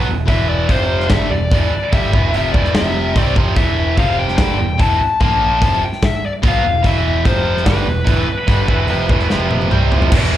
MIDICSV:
0, 0, Header, 1, 7, 480
1, 0, Start_track
1, 0, Tempo, 409836
1, 338, Time_signature, 4, 2, 24, 8
1, 12149, End_track
2, 0, Start_track
2, 0, Title_t, "Lead electric guitar"
2, 0, Program_c, 0, 29
2, 337, Note_on_c, 0, 76, 90
2, 572, Note_off_c, 0, 76, 0
2, 576, Note_on_c, 0, 74, 86
2, 812, Note_on_c, 0, 72, 74
2, 825, Note_off_c, 0, 74, 0
2, 1296, Note_on_c, 0, 76, 87
2, 1311, Note_off_c, 0, 72, 0
2, 1532, Note_off_c, 0, 76, 0
2, 1536, Note_on_c, 0, 74, 99
2, 2264, Note_off_c, 0, 74, 0
2, 2269, Note_on_c, 0, 76, 81
2, 2749, Note_off_c, 0, 76, 0
2, 2763, Note_on_c, 0, 76, 81
2, 2956, Note_off_c, 0, 76, 0
2, 2961, Note_on_c, 0, 74, 77
2, 3194, Note_off_c, 0, 74, 0
2, 3238, Note_on_c, 0, 76, 82
2, 3754, Note_off_c, 0, 76, 0
2, 3754, Note_on_c, 0, 74, 82
2, 3904, Note_off_c, 0, 74, 0
2, 4178, Note_on_c, 0, 76, 83
2, 4627, Note_off_c, 0, 76, 0
2, 4664, Note_on_c, 0, 77, 88
2, 4910, Note_on_c, 0, 79, 90
2, 4911, Note_off_c, 0, 77, 0
2, 5111, Note_off_c, 0, 79, 0
2, 5125, Note_on_c, 0, 79, 101
2, 5623, Note_off_c, 0, 79, 0
2, 5627, Note_on_c, 0, 81, 100
2, 6095, Note_off_c, 0, 81, 0
2, 6109, Note_on_c, 0, 81, 89
2, 6843, Note_off_c, 0, 81, 0
2, 6847, Note_on_c, 0, 79, 92
2, 7081, Note_off_c, 0, 79, 0
2, 7084, Note_on_c, 0, 76, 95
2, 7320, Note_off_c, 0, 76, 0
2, 7330, Note_on_c, 0, 74, 94
2, 7391, Note_off_c, 0, 74, 0
2, 7589, Note_on_c, 0, 77, 95
2, 8035, Note_off_c, 0, 77, 0
2, 8039, Note_on_c, 0, 76, 87
2, 8500, Note_off_c, 0, 76, 0
2, 8505, Note_on_c, 0, 72, 79
2, 8973, Note_off_c, 0, 72, 0
2, 8978, Note_on_c, 0, 71, 76
2, 11329, Note_off_c, 0, 71, 0
2, 12149, End_track
3, 0, Start_track
3, 0, Title_t, "Distorted electric guitar"
3, 0, Program_c, 1, 30
3, 78, Note_on_c, 1, 40, 70
3, 84, Note_on_c, 1, 47, 66
3, 280, Note_off_c, 1, 40, 0
3, 283, Note_off_c, 1, 47, 0
3, 300, Note_on_c, 1, 40, 93
3, 307, Note_on_c, 1, 47, 80
3, 314, Note_on_c, 1, 52, 88
3, 793, Note_off_c, 1, 40, 0
3, 796, Note_off_c, 1, 47, 0
3, 797, Note_on_c, 1, 41, 75
3, 800, Note_off_c, 1, 52, 0
3, 807, Note_on_c, 1, 48, 78
3, 810, Note_on_c, 1, 53, 88
3, 1269, Note_off_c, 1, 41, 0
3, 1273, Note_on_c, 1, 43, 90
3, 1278, Note_off_c, 1, 48, 0
3, 1282, Note_off_c, 1, 53, 0
3, 1283, Note_on_c, 1, 50, 105
3, 1287, Note_on_c, 1, 55, 98
3, 1520, Note_off_c, 1, 43, 0
3, 1525, Note_off_c, 1, 50, 0
3, 1527, Note_off_c, 1, 55, 0
3, 1527, Note_on_c, 1, 40, 60
3, 1535, Note_on_c, 1, 47, 69
3, 1726, Note_off_c, 1, 40, 0
3, 1730, Note_off_c, 1, 47, 0
3, 1762, Note_on_c, 1, 40, 95
3, 1772, Note_on_c, 1, 47, 84
3, 1772, Note_on_c, 1, 52, 91
3, 2005, Note_off_c, 1, 40, 0
3, 2009, Note_off_c, 1, 47, 0
3, 2010, Note_off_c, 1, 52, 0
3, 2261, Note_on_c, 1, 50, 84
3, 2263, Note_on_c, 1, 43, 86
3, 2271, Note_on_c, 1, 55, 82
3, 2494, Note_off_c, 1, 50, 0
3, 2495, Note_off_c, 1, 43, 0
3, 2499, Note_off_c, 1, 55, 0
3, 2501, Note_on_c, 1, 40, 92
3, 2513, Note_on_c, 1, 47, 89
3, 2513, Note_on_c, 1, 52, 97
3, 2734, Note_off_c, 1, 40, 0
3, 2740, Note_off_c, 1, 47, 0
3, 2740, Note_off_c, 1, 52, 0
3, 2744, Note_on_c, 1, 41, 85
3, 2747, Note_on_c, 1, 48, 93
3, 2755, Note_on_c, 1, 53, 92
3, 2976, Note_off_c, 1, 41, 0
3, 2978, Note_off_c, 1, 48, 0
3, 2981, Note_off_c, 1, 53, 0
3, 2985, Note_on_c, 1, 40, 91
3, 2987, Note_on_c, 1, 47, 90
3, 2992, Note_on_c, 1, 52, 88
3, 3207, Note_off_c, 1, 40, 0
3, 3211, Note_on_c, 1, 41, 87
3, 3216, Note_off_c, 1, 47, 0
3, 3218, Note_off_c, 1, 52, 0
3, 3221, Note_on_c, 1, 48, 96
3, 3223, Note_on_c, 1, 53, 119
3, 3677, Note_off_c, 1, 48, 0
3, 3690, Note_off_c, 1, 41, 0
3, 3690, Note_off_c, 1, 53, 0
3, 3692, Note_on_c, 1, 48, 90
3, 3695, Note_on_c, 1, 55, 91
3, 3703, Note_on_c, 1, 60, 100
3, 3930, Note_off_c, 1, 48, 0
3, 3931, Note_off_c, 1, 55, 0
3, 3932, Note_on_c, 1, 41, 80
3, 3935, Note_off_c, 1, 60, 0
3, 3942, Note_on_c, 1, 48, 101
3, 3948, Note_on_c, 1, 53, 96
3, 4166, Note_off_c, 1, 41, 0
3, 4171, Note_off_c, 1, 53, 0
3, 4171, Note_on_c, 1, 40, 83
3, 4173, Note_off_c, 1, 48, 0
3, 4175, Note_on_c, 1, 52, 97
3, 4178, Note_on_c, 1, 47, 78
3, 4650, Note_off_c, 1, 40, 0
3, 4652, Note_off_c, 1, 52, 0
3, 4653, Note_off_c, 1, 47, 0
3, 4661, Note_on_c, 1, 41, 77
3, 4662, Note_on_c, 1, 48, 91
3, 4671, Note_on_c, 1, 53, 90
3, 5128, Note_off_c, 1, 41, 0
3, 5132, Note_on_c, 1, 43, 84
3, 5135, Note_off_c, 1, 48, 0
3, 5140, Note_off_c, 1, 53, 0
3, 5144, Note_on_c, 1, 50, 92
3, 5144, Note_on_c, 1, 55, 103
3, 5360, Note_off_c, 1, 43, 0
3, 5364, Note_on_c, 1, 40, 64
3, 5366, Note_off_c, 1, 50, 0
3, 5370, Note_on_c, 1, 47, 78
3, 5376, Note_off_c, 1, 55, 0
3, 5565, Note_off_c, 1, 40, 0
3, 5568, Note_off_c, 1, 47, 0
3, 5596, Note_on_c, 1, 40, 88
3, 5601, Note_on_c, 1, 47, 99
3, 5603, Note_on_c, 1, 52, 87
3, 5833, Note_off_c, 1, 40, 0
3, 5845, Note_off_c, 1, 47, 0
3, 5845, Note_off_c, 1, 52, 0
3, 6093, Note_on_c, 1, 46, 93
3, 6095, Note_on_c, 1, 53, 81
3, 6100, Note_on_c, 1, 58, 88
3, 6562, Note_on_c, 1, 41, 81
3, 6563, Note_off_c, 1, 53, 0
3, 6567, Note_off_c, 1, 46, 0
3, 6571, Note_on_c, 1, 48, 85
3, 6574, Note_off_c, 1, 58, 0
3, 6577, Note_on_c, 1, 53, 86
3, 6805, Note_off_c, 1, 41, 0
3, 6809, Note_off_c, 1, 48, 0
3, 6812, Note_off_c, 1, 53, 0
3, 7521, Note_on_c, 1, 47, 92
3, 7532, Note_on_c, 1, 59, 93
3, 7533, Note_on_c, 1, 54, 94
3, 7764, Note_off_c, 1, 47, 0
3, 7770, Note_off_c, 1, 54, 0
3, 7770, Note_off_c, 1, 59, 0
3, 7770, Note_on_c, 1, 40, 69
3, 7780, Note_on_c, 1, 47, 72
3, 7967, Note_off_c, 1, 40, 0
3, 7973, Note_off_c, 1, 47, 0
3, 8008, Note_on_c, 1, 40, 70
3, 8019, Note_on_c, 1, 47, 80
3, 8022, Note_on_c, 1, 52, 92
3, 8474, Note_off_c, 1, 40, 0
3, 8479, Note_on_c, 1, 41, 79
3, 8481, Note_off_c, 1, 47, 0
3, 8485, Note_off_c, 1, 52, 0
3, 8486, Note_on_c, 1, 48, 87
3, 8489, Note_on_c, 1, 53, 90
3, 8962, Note_off_c, 1, 41, 0
3, 8966, Note_off_c, 1, 48, 0
3, 8968, Note_off_c, 1, 53, 0
3, 8980, Note_on_c, 1, 43, 97
3, 8986, Note_on_c, 1, 50, 110
3, 8988, Note_on_c, 1, 55, 108
3, 9212, Note_off_c, 1, 43, 0
3, 9216, Note_off_c, 1, 50, 0
3, 9216, Note_on_c, 1, 40, 70
3, 9217, Note_off_c, 1, 55, 0
3, 9221, Note_on_c, 1, 47, 77
3, 9410, Note_off_c, 1, 40, 0
3, 9412, Note_off_c, 1, 47, 0
3, 9442, Note_on_c, 1, 40, 97
3, 9448, Note_on_c, 1, 47, 100
3, 9451, Note_on_c, 1, 52, 106
3, 9684, Note_off_c, 1, 40, 0
3, 9687, Note_off_c, 1, 47, 0
3, 9688, Note_off_c, 1, 52, 0
3, 9931, Note_on_c, 1, 50, 94
3, 9933, Note_on_c, 1, 43, 89
3, 9937, Note_on_c, 1, 55, 96
3, 10167, Note_off_c, 1, 43, 0
3, 10168, Note_off_c, 1, 50, 0
3, 10171, Note_off_c, 1, 55, 0
3, 10172, Note_on_c, 1, 40, 84
3, 10175, Note_on_c, 1, 47, 86
3, 10181, Note_on_c, 1, 52, 88
3, 10401, Note_off_c, 1, 40, 0
3, 10403, Note_off_c, 1, 47, 0
3, 10406, Note_on_c, 1, 41, 87
3, 10408, Note_on_c, 1, 48, 75
3, 10411, Note_off_c, 1, 52, 0
3, 10416, Note_on_c, 1, 53, 94
3, 10644, Note_off_c, 1, 41, 0
3, 10646, Note_off_c, 1, 48, 0
3, 10649, Note_on_c, 1, 40, 73
3, 10650, Note_off_c, 1, 53, 0
3, 10657, Note_on_c, 1, 52, 97
3, 10659, Note_on_c, 1, 47, 85
3, 10882, Note_off_c, 1, 40, 0
3, 10887, Note_on_c, 1, 41, 94
3, 10890, Note_off_c, 1, 52, 0
3, 10891, Note_off_c, 1, 47, 0
3, 10898, Note_on_c, 1, 48, 92
3, 10902, Note_on_c, 1, 53, 104
3, 11344, Note_off_c, 1, 48, 0
3, 11354, Note_off_c, 1, 53, 0
3, 11358, Note_on_c, 1, 48, 89
3, 11359, Note_on_c, 1, 55, 89
3, 11364, Note_off_c, 1, 41, 0
3, 11370, Note_on_c, 1, 60, 93
3, 11585, Note_off_c, 1, 48, 0
3, 11599, Note_on_c, 1, 41, 95
3, 11599, Note_on_c, 1, 48, 89
3, 11600, Note_off_c, 1, 55, 0
3, 11606, Note_off_c, 1, 60, 0
3, 11607, Note_on_c, 1, 53, 93
3, 11830, Note_off_c, 1, 41, 0
3, 11835, Note_off_c, 1, 48, 0
3, 11835, Note_on_c, 1, 40, 86
3, 11839, Note_on_c, 1, 47, 84
3, 11841, Note_off_c, 1, 53, 0
3, 11846, Note_on_c, 1, 52, 104
3, 12149, Note_off_c, 1, 40, 0
3, 12149, Note_off_c, 1, 47, 0
3, 12149, Note_off_c, 1, 52, 0
3, 12149, End_track
4, 0, Start_track
4, 0, Title_t, "Picked electric bass"
4, 0, Program_c, 2, 34
4, 90, Note_on_c, 2, 28, 62
4, 318, Note_off_c, 2, 28, 0
4, 325, Note_on_c, 2, 28, 87
4, 779, Note_off_c, 2, 28, 0
4, 811, Note_on_c, 2, 29, 87
4, 1262, Note_off_c, 2, 29, 0
4, 1294, Note_on_c, 2, 31, 83
4, 1520, Note_off_c, 2, 31, 0
4, 1531, Note_on_c, 2, 28, 82
4, 1759, Note_off_c, 2, 28, 0
4, 1775, Note_on_c, 2, 28, 88
4, 2001, Note_off_c, 2, 28, 0
4, 2261, Note_on_c, 2, 31, 93
4, 2485, Note_off_c, 2, 31, 0
4, 2497, Note_on_c, 2, 28, 89
4, 2723, Note_off_c, 2, 28, 0
4, 2751, Note_on_c, 2, 29, 94
4, 2970, Note_off_c, 2, 29, 0
4, 2983, Note_on_c, 2, 28, 94
4, 3206, Note_off_c, 2, 28, 0
4, 3218, Note_on_c, 2, 29, 88
4, 3667, Note_off_c, 2, 29, 0
4, 3695, Note_on_c, 2, 36, 96
4, 3922, Note_off_c, 2, 36, 0
4, 3934, Note_on_c, 2, 29, 71
4, 4161, Note_off_c, 2, 29, 0
4, 4173, Note_on_c, 2, 28, 79
4, 4624, Note_off_c, 2, 28, 0
4, 4656, Note_on_c, 2, 29, 91
4, 5105, Note_off_c, 2, 29, 0
4, 5137, Note_on_c, 2, 31, 91
4, 5363, Note_off_c, 2, 31, 0
4, 5390, Note_on_c, 2, 28, 81
4, 5610, Note_off_c, 2, 28, 0
4, 5620, Note_on_c, 2, 28, 89
4, 5845, Note_off_c, 2, 28, 0
4, 6095, Note_on_c, 2, 34, 78
4, 6545, Note_off_c, 2, 34, 0
4, 6574, Note_on_c, 2, 29, 91
4, 6801, Note_off_c, 2, 29, 0
4, 7533, Note_on_c, 2, 35, 86
4, 7760, Note_off_c, 2, 35, 0
4, 7775, Note_on_c, 2, 28, 71
4, 8001, Note_off_c, 2, 28, 0
4, 8013, Note_on_c, 2, 28, 85
4, 8463, Note_off_c, 2, 28, 0
4, 8497, Note_on_c, 2, 29, 91
4, 8945, Note_off_c, 2, 29, 0
4, 8974, Note_on_c, 2, 31, 86
4, 9200, Note_off_c, 2, 31, 0
4, 9214, Note_on_c, 2, 28, 86
4, 9440, Note_off_c, 2, 28, 0
4, 9447, Note_on_c, 2, 28, 95
4, 9676, Note_off_c, 2, 28, 0
4, 9930, Note_on_c, 2, 31, 81
4, 10157, Note_off_c, 2, 31, 0
4, 10170, Note_on_c, 2, 28, 85
4, 10397, Note_off_c, 2, 28, 0
4, 10417, Note_on_c, 2, 29, 96
4, 10637, Note_off_c, 2, 29, 0
4, 10644, Note_on_c, 2, 28, 89
4, 10874, Note_off_c, 2, 28, 0
4, 10898, Note_on_c, 2, 29, 82
4, 11344, Note_off_c, 2, 29, 0
4, 11381, Note_on_c, 2, 36, 93
4, 11602, Note_off_c, 2, 36, 0
4, 11614, Note_on_c, 2, 29, 86
4, 11838, Note_off_c, 2, 29, 0
4, 11857, Note_on_c, 2, 28, 93
4, 12149, Note_off_c, 2, 28, 0
4, 12149, End_track
5, 0, Start_track
5, 0, Title_t, "Muted distorted electric guitar strokes"
5, 2018, Note_on_c, 9, 29, 64
5, 2135, Note_off_c, 9, 29, 0
5, 5847, Note_on_c, 9, 29, 54
5, 5965, Note_off_c, 9, 29, 0
5, 9703, Note_on_c, 9, 29, 62
5, 9820, Note_off_c, 9, 29, 0
5, 12149, End_track
6, 0, Start_track
6, 0, Title_t, "Muted picked electric bass strokes"
6, 2021, Note_on_c, 9, 29, 34
6, 2138, Note_off_c, 9, 29, 0
6, 5870, Note_on_c, 9, 29, 35
6, 5987, Note_off_c, 9, 29, 0
6, 9687, Note_on_c, 9, 29, 34
6, 9804, Note_off_c, 9, 29, 0
6, 12149, End_track
7, 0, Start_track
7, 0, Title_t, "Drums"
7, 328, Note_on_c, 9, 36, 103
7, 332, Note_on_c, 9, 46, 56
7, 445, Note_off_c, 9, 36, 0
7, 449, Note_off_c, 9, 46, 0
7, 809, Note_on_c, 9, 36, 98
7, 810, Note_on_c, 9, 46, 55
7, 926, Note_off_c, 9, 36, 0
7, 928, Note_off_c, 9, 46, 0
7, 1171, Note_on_c, 9, 38, 31
7, 1284, Note_off_c, 9, 38, 0
7, 1284, Note_on_c, 9, 38, 113
7, 1284, Note_on_c, 9, 46, 55
7, 1292, Note_on_c, 9, 36, 109
7, 1401, Note_off_c, 9, 38, 0
7, 1401, Note_off_c, 9, 46, 0
7, 1409, Note_off_c, 9, 36, 0
7, 1774, Note_on_c, 9, 36, 121
7, 1774, Note_on_c, 9, 46, 58
7, 1891, Note_off_c, 9, 36, 0
7, 1891, Note_off_c, 9, 46, 0
7, 2257, Note_on_c, 9, 36, 104
7, 2258, Note_on_c, 9, 46, 51
7, 2375, Note_off_c, 9, 36, 0
7, 2376, Note_off_c, 9, 46, 0
7, 2499, Note_on_c, 9, 36, 98
7, 2617, Note_off_c, 9, 36, 0
7, 2740, Note_on_c, 9, 46, 52
7, 2858, Note_off_c, 9, 46, 0
7, 2978, Note_on_c, 9, 36, 84
7, 3095, Note_off_c, 9, 36, 0
7, 3097, Note_on_c, 9, 38, 29
7, 3214, Note_off_c, 9, 38, 0
7, 3217, Note_on_c, 9, 38, 117
7, 3217, Note_on_c, 9, 46, 64
7, 3334, Note_off_c, 9, 38, 0
7, 3334, Note_off_c, 9, 46, 0
7, 3699, Note_on_c, 9, 36, 104
7, 3703, Note_on_c, 9, 46, 60
7, 3816, Note_off_c, 9, 36, 0
7, 3820, Note_off_c, 9, 46, 0
7, 3938, Note_on_c, 9, 36, 98
7, 4055, Note_off_c, 9, 36, 0
7, 4169, Note_on_c, 9, 46, 51
7, 4175, Note_on_c, 9, 36, 102
7, 4286, Note_off_c, 9, 46, 0
7, 4292, Note_off_c, 9, 36, 0
7, 4655, Note_on_c, 9, 36, 100
7, 4657, Note_on_c, 9, 46, 54
7, 4773, Note_off_c, 9, 36, 0
7, 4774, Note_off_c, 9, 46, 0
7, 5016, Note_on_c, 9, 38, 30
7, 5129, Note_off_c, 9, 38, 0
7, 5129, Note_on_c, 9, 38, 111
7, 5129, Note_on_c, 9, 46, 59
7, 5134, Note_on_c, 9, 36, 113
7, 5246, Note_off_c, 9, 38, 0
7, 5246, Note_off_c, 9, 46, 0
7, 5251, Note_off_c, 9, 36, 0
7, 5616, Note_on_c, 9, 36, 98
7, 5620, Note_on_c, 9, 46, 58
7, 5733, Note_off_c, 9, 36, 0
7, 5737, Note_off_c, 9, 46, 0
7, 6098, Note_on_c, 9, 36, 98
7, 6104, Note_on_c, 9, 46, 47
7, 6215, Note_off_c, 9, 36, 0
7, 6222, Note_off_c, 9, 46, 0
7, 6579, Note_on_c, 9, 36, 97
7, 6585, Note_on_c, 9, 46, 55
7, 6696, Note_off_c, 9, 36, 0
7, 6703, Note_off_c, 9, 46, 0
7, 6939, Note_on_c, 9, 38, 28
7, 7056, Note_off_c, 9, 38, 0
7, 7057, Note_on_c, 9, 36, 99
7, 7059, Note_on_c, 9, 38, 117
7, 7059, Note_on_c, 9, 46, 55
7, 7174, Note_off_c, 9, 36, 0
7, 7176, Note_off_c, 9, 38, 0
7, 7176, Note_off_c, 9, 46, 0
7, 7536, Note_on_c, 9, 36, 112
7, 7542, Note_on_c, 9, 46, 61
7, 7653, Note_off_c, 9, 36, 0
7, 7659, Note_off_c, 9, 46, 0
7, 8014, Note_on_c, 9, 36, 91
7, 8014, Note_on_c, 9, 46, 58
7, 8131, Note_off_c, 9, 36, 0
7, 8131, Note_off_c, 9, 46, 0
7, 8496, Note_on_c, 9, 36, 102
7, 8505, Note_on_c, 9, 46, 54
7, 8613, Note_off_c, 9, 36, 0
7, 8622, Note_off_c, 9, 46, 0
7, 8867, Note_on_c, 9, 38, 33
7, 8973, Note_off_c, 9, 38, 0
7, 8973, Note_on_c, 9, 38, 115
7, 8973, Note_on_c, 9, 46, 54
7, 8975, Note_on_c, 9, 36, 112
7, 9090, Note_off_c, 9, 38, 0
7, 9090, Note_off_c, 9, 46, 0
7, 9092, Note_off_c, 9, 36, 0
7, 9447, Note_on_c, 9, 46, 58
7, 9451, Note_on_c, 9, 36, 122
7, 9564, Note_off_c, 9, 46, 0
7, 9568, Note_off_c, 9, 36, 0
7, 9930, Note_on_c, 9, 36, 109
7, 9931, Note_on_c, 9, 46, 58
7, 10047, Note_off_c, 9, 36, 0
7, 10048, Note_off_c, 9, 46, 0
7, 10171, Note_on_c, 9, 36, 97
7, 10288, Note_off_c, 9, 36, 0
7, 10399, Note_on_c, 9, 46, 50
7, 10516, Note_off_c, 9, 46, 0
7, 10651, Note_on_c, 9, 36, 98
7, 10765, Note_on_c, 9, 38, 31
7, 10768, Note_off_c, 9, 36, 0
7, 10883, Note_off_c, 9, 38, 0
7, 10892, Note_on_c, 9, 38, 67
7, 11009, Note_off_c, 9, 38, 0
7, 11134, Note_on_c, 9, 48, 78
7, 11251, Note_off_c, 9, 48, 0
7, 11264, Note_on_c, 9, 48, 60
7, 11377, Note_on_c, 9, 47, 85
7, 11381, Note_off_c, 9, 48, 0
7, 11494, Note_off_c, 9, 47, 0
7, 11617, Note_on_c, 9, 43, 90
7, 11734, Note_off_c, 9, 43, 0
7, 11736, Note_on_c, 9, 43, 88
7, 11851, Note_on_c, 9, 36, 110
7, 11853, Note_off_c, 9, 43, 0
7, 11854, Note_on_c, 9, 49, 127
7, 11854, Note_on_c, 9, 57, 58
7, 11969, Note_off_c, 9, 36, 0
7, 11971, Note_off_c, 9, 49, 0
7, 11971, Note_off_c, 9, 57, 0
7, 12149, End_track
0, 0, End_of_file